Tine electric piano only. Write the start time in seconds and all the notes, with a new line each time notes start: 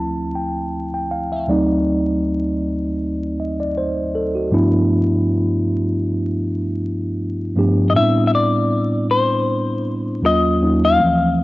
Already playing: D2 F3 A3 C4 E4 A5
0.35 G5
0.94 G5
1.11 F5
1.32 E5
1.47 D2 F#3 A3 C4 D#4 D5
3.40 D#5
3.60 D5
3.78 C5
4.15 A4
4.35 F#4
4.51 G2 F3 A3 B3 D4 E4
7.56 G2 F3 A3 B3 D4 G4
7.94 A2 G3 B3 C4 D4 E4
10.21 D#2 F#3 A#3 C#4 F4
10.60 D#2 F#3 A#3 C#4 D#4
10.98 D2 E3 F3 A3 C4